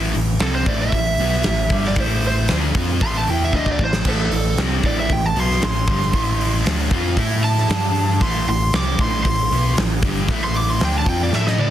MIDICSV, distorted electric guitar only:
0, 0, Header, 1, 2, 480
1, 0, Start_track
1, 0, Key_signature, 0, "minor"
1, 0, Tempo, 520382
1, 1825, Time_signature, 4, 2, 24, 8
1, 10795, End_track
2, 0, Start_track
2, 0, Title_t, "Distorted electric guitar"
2, 0, Program_c, 0, 30
2, 0, Note_on_c, 0, 45, 94
2, 0, Note_on_c, 0, 52, 101
2, 0, Note_on_c, 0, 57, 91
2, 118, Note_off_c, 0, 45, 0
2, 121, Note_off_c, 0, 52, 0
2, 129, Note_on_c, 0, 45, 62
2, 132, Note_on_c, 0, 52, 69
2, 135, Note_off_c, 0, 57, 0
2, 330, Note_off_c, 0, 45, 0
2, 331, Note_off_c, 0, 52, 0
2, 371, Note_on_c, 0, 48, 96
2, 375, Note_on_c, 0, 55, 85
2, 381, Note_on_c, 0, 60, 91
2, 611, Note_off_c, 0, 48, 0
2, 613, Note_off_c, 0, 55, 0
2, 616, Note_off_c, 0, 60, 0
2, 624, Note_on_c, 0, 45, 93
2, 628, Note_on_c, 0, 52, 99
2, 629, Note_on_c, 0, 57, 97
2, 856, Note_off_c, 0, 45, 0
2, 860, Note_off_c, 0, 52, 0
2, 860, Note_off_c, 0, 57, 0
2, 867, Note_on_c, 0, 45, 60
2, 870, Note_on_c, 0, 52, 79
2, 1058, Note_off_c, 0, 45, 0
2, 1060, Note_off_c, 0, 52, 0
2, 1109, Note_on_c, 0, 47, 86
2, 1113, Note_on_c, 0, 54, 101
2, 1118, Note_on_c, 0, 59, 100
2, 1338, Note_off_c, 0, 47, 0
2, 1342, Note_off_c, 0, 54, 0
2, 1342, Note_on_c, 0, 45, 65
2, 1344, Note_off_c, 0, 59, 0
2, 1350, Note_on_c, 0, 52, 66
2, 1536, Note_off_c, 0, 45, 0
2, 1540, Note_off_c, 0, 52, 0
2, 1586, Note_on_c, 0, 43, 89
2, 1587, Note_on_c, 0, 50, 77
2, 1591, Note_on_c, 0, 55, 103
2, 1819, Note_off_c, 0, 43, 0
2, 1819, Note_off_c, 0, 50, 0
2, 1821, Note_off_c, 0, 55, 0
2, 1822, Note_on_c, 0, 45, 83
2, 1826, Note_on_c, 0, 52, 98
2, 1827, Note_on_c, 0, 57, 101
2, 2296, Note_off_c, 0, 45, 0
2, 2298, Note_off_c, 0, 52, 0
2, 2299, Note_off_c, 0, 57, 0
2, 2307, Note_on_c, 0, 50, 88
2, 2310, Note_on_c, 0, 57, 96
2, 2315, Note_on_c, 0, 62, 94
2, 2535, Note_off_c, 0, 50, 0
2, 2539, Note_on_c, 0, 53, 85
2, 2540, Note_off_c, 0, 57, 0
2, 2543, Note_off_c, 0, 62, 0
2, 2548, Note_on_c, 0, 60, 89
2, 2549, Note_on_c, 0, 65, 92
2, 2775, Note_off_c, 0, 53, 0
2, 2779, Note_off_c, 0, 60, 0
2, 2780, Note_off_c, 0, 65, 0
2, 2791, Note_on_c, 0, 45, 93
2, 2795, Note_on_c, 0, 52, 106
2, 2797, Note_on_c, 0, 57, 115
2, 3014, Note_off_c, 0, 52, 0
2, 3021, Note_off_c, 0, 45, 0
2, 3024, Note_off_c, 0, 57, 0
2, 3025, Note_on_c, 0, 52, 93
2, 3029, Note_on_c, 0, 59, 94
2, 3031, Note_on_c, 0, 64, 102
2, 3258, Note_off_c, 0, 52, 0
2, 3259, Note_off_c, 0, 59, 0
2, 3260, Note_off_c, 0, 64, 0
2, 3262, Note_on_c, 0, 50, 88
2, 3265, Note_on_c, 0, 57, 88
2, 3269, Note_on_c, 0, 62, 102
2, 3496, Note_off_c, 0, 50, 0
2, 3497, Note_off_c, 0, 57, 0
2, 3499, Note_off_c, 0, 62, 0
2, 3506, Note_on_c, 0, 45, 55
2, 3507, Note_on_c, 0, 52, 68
2, 3697, Note_off_c, 0, 45, 0
2, 3697, Note_off_c, 0, 52, 0
2, 3749, Note_on_c, 0, 45, 79
2, 3751, Note_on_c, 0, 52, 98
2, 3751, Note_on_c, 0, 57, 98
2, 3980, Note_off_c, 0, 45, 0
2, 3980, Note_off_c, 0, 52, 0
2, 3980, Note_off_c, 0, 57, 0
2, 3992, Note_on_c, 0, 45, 63
2, 3992, Note_on_c, 0, 52, 77
2, 4180, Note_off_c, 0, 45, 0
2, 4180, Note_off_c, 0, 52, 0
2, 4228, Note_on_c, 0, 48, 88
2, 4236, Note_on_c, 0, 55, 104
2, 4236, Note_on_c, 0, 60, 109
2, 4459, Note_off_c, 0, 48, 0
2, 4463, Note_off_c, 0, 55, 0
2, 4463, Note_off_c, 0, 60, 0
2, 4465, Note_on_c, 0, 45, 83
2, 4471, Note_on_c, 0, 52, 102
2, 4477, Note_on_c, 0, 57, 103
2, 4697, Note_off_c, 0, 45, 0
2, 4700, Note_off_c, 0, 52, 0
2, 4703, Note_off_c, 0, 57, 0
2, 4712, Note_on_c, 0, 45, 64
2, 4715, Note_on_c, 0, 52, 67
2, 4900, Note_off_c, 0, 45, 0
2, 4901, Note_off_c, 0, 52, 0
2, 4944, Note_on_c, 0, 47, 95
2, 4951, Note_on_c, 0, 54, 99
2, 4954, Note_on_c, 0, 59, 105
2, 5176, Note_off_c, 0, 47, 0
2, 5180, Note_off_c, 0, 54, 0
2, 5181, Note_off_c, 0, 59, 0
2, 5187, Note_on_c, 0, 45, 63
2, 5187, Note_on_c, 0, 52, 69
2, 5377, Note_off_c, 0, 45, 0
2, 5377, Note_off_c, 0, 52, 0
2, 5423, Note_on_c, 0, 43, 97
2, 5429, Note_on_c, 0, 50, 90
2, 5431, Note_on_c, 0, 55, 100
2, 5651, Note_off_c, 0, 50, 0
2, 5655, Note_on_c, 0, 45, 85
2, 5656, Note_off_c, 0, 43, 0
2, 5657, Note_off_c, 0, 55, 0
2, 5661, Note_on_c, 0, 52, 97
2, 5666, Note_on_c, 0, 57, 95
2, 6131, Note_off_c, 0, 45, 0
2, 6132, Note_off_c, 0, 57, 0
2, 6134, Note_off_c, 0, 52, 0
2, 6140, Note_on_c, 0, 50, 87
2, 6143, Note_on_c, 0, 57, 98
2, 6151, Note_on_c, 0, 62, 98
2, 6374, Note_off_c, 0, 50, 0
2, 6375, Note_off_c, 0, 57, 0
2, 6379, Note_off_c, 0, 62, 0
2, 6381, Note_on_c, 0, 53, 80
2, 6389, Note_on_c, 0, 60, 84
2, 6390, Note_on_c, 0, 65, 104
2, 6611, Note_off_c, 0, 60, 0
2, 6611, Note_off_c, 0, 65, 0
2, 6614, Note_off_c, 0, 53, 0
2, 6614, Note_on_c, 0, 57, 95
2, 6614, Note_on_c, 0, 64, 110
2, 6622, Note_on_c, 0, 69, 99
2, 7100, Note_off_c, 0, 57, 0
2, 7100, Note_on_c, 0, 55, 104
2, 7103, Note_off_c, 0, 64, 0
2, 7103, Note_on_c, 0, 62, 95
2, 7107, Note_off_c, 0, 69, 0
2, 7107, Note_on_c, 0, 67, 109
2, 7573, Note_off_c, 0, 55, 0
2, 7574, Note_off_c, 0, 62, 0
2, 7574, Note_on_c, 0, 45, 83
2, 7577, Note_off_c, 0, 67, 0
2, 7580, Note_on_c, 0, 52, 96
2, 7583, Note_on_c, 0, 57, 95
2, 7810, Note_off_c, 0, 45, 0
2, 7813, Note_off_c, 0, 52, 0
2, 7814, Note_off_c, 0, 57, 0
2, 7820, Note_on_c, 0, 45, 75
2, 7826, Note_on_c, 0, 52, 76
2, 8012, Note_off_c, 0, 45, 0
2, 8015, Note_off_c, 0, 52, 0
2, 8063, Note_on_c, 0, 48, 94
2, 8070, Note_on_c, 0, 55, 91
2, 8075, Note_on_c, 0, 60, 100
2, 8294, Note_off_c, 0, 48, 0
2, 8298, Note_off_c, 0, 55, 0
2, 8300, Note_off_c, 0, 60, 0
2, 8302, Note_on_c, 0, 45, 94
2, 8308, Note_on_c, 0, 52, 103
2, 8310, Note_on_c, 0, 57, 110
2, 8534, Note_off_c, 0, 45, 0
2, 8537, Note_off_c, 0, 52, 0
2, 8538, Note_off_c, 0, 57, 0
2, 8546, Note_on_c, 0, 45, 68
2, 8553, Note_on_c, 0, 52, 75
2, 8735, Note_off_c, 0, 45, 0
2, 8739, Note_off_c, 0, 52, 0
2, 8783, Note_on_c, 0, 47, 98
2, 8788, Note_on_c, 0, 54, 95
2, 8793, Note_on_c, 0, 59, 100
2, 9014, Note_off_c, 0, 47, 0
2, 9017, Note_off_c, 0, 54, 0
2, 9019, Note_off_c, 0, 59, 0
2, 9028, Note_on_c, 0, 45, 65
2, 9031, Note_on_c, 0, 52, 75
2, 9216, Note_off_c, 0, 45, 0
2, 9218, Note_off_c, 0, 52, 0
2, 9267, Note_on_c, 0, 43, 86
2, 9267, Note_on_c, 0, 50, 95
2, 9271, Note_on_c, 0, 55, 100
2, 9496, Note_off_c, 0, 43, 0
2, 9496, Note_off_c, 0, 50, 0
2, 9498, Note_off_c, 0, 55, 0
2, 9502, Note_on_c, 0, 45, 90
2, 9503, Note_on_c, 0, 52, 95
2, 9510, Note_on_c, 0, 57, 102
2, 9971, Note_off_c, 0, 57, 0
2, 9974, Note_off_c, 0, 45, 0
2, 9975, Note_off_c, 0, 52, 0
2, 9978, Note_on_c, 0, 50, 91
2, 9982, Note_on_c, 0, 57, 111
2, 9984, Note_on_c, 0, 62, 102
2, 10200, Note_off_c, 0, 50, 0
2, 10204, Note_on_c, 0, 53, 96
2, 10207, Note_off_c, 0, 57, 0
2, 10211, Note_off_c, 0, 62, 0
2, 10211, Note_on_c, 0, 60, 102
2, 10215, Note_on_c, 0, 65, 95
2, 10446, Note_off_c, 0, 53, 0
2, 10448, Note_off_c, 0, 60, 0
2, 10448, Note_on_c, 0, 57, 88
2, 10455, Note_off_c, 0, 65, 0
2, 10455, Note_on_c, 0, 64, 112
2, 10460, Note_on_c, 0, 69, 109
2, 10795, Note_off_c, 0, 57, 0
2, 10795, Note_off_c, 0, 64, 0
2, 10795, Note_off_c, 0, 69, 0
2, 10795, End_track
0, 0, End_of_file